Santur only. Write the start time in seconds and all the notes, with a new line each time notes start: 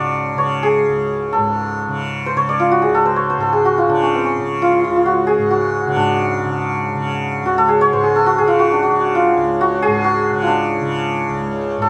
Already playing: F#4 A4 D5
0.38 C#5
0.63 G#4
1.33 A4
2.26 C5
2.37 C#5
2.49 D5
2.60 F4
2.71 F#4
2.82 G#4
2.94 A4
3.06 C5
3.16 C#5
3.30 C5
3.40 A4
3.53 G#4
3.65 F#4
3.78 F4
3.89 D4
4.03 C#4
4.15 C4
4.25 C#4
4.62 F4
4.67 F4
4.72 F4
4.80 F4
4.84 F4
4.90 F4
4.96 F4
5.06 F#4
5.27 G#4
5.51 F#4
5.96 D4
7.46 F#4
7.58 A4
7.69 G#4
7.81 C#5
7.93 C5
8.03 G#4
8.16 A4
8.26 F#4
8.38 G#4
8.48 F4
8.59 F#4
8.72 D4
8.83 F#4
9.15 F4
9.61 F#4
9.82 G#4
10.04 F#4
10.42 F4
10.47 D4
11.82 A4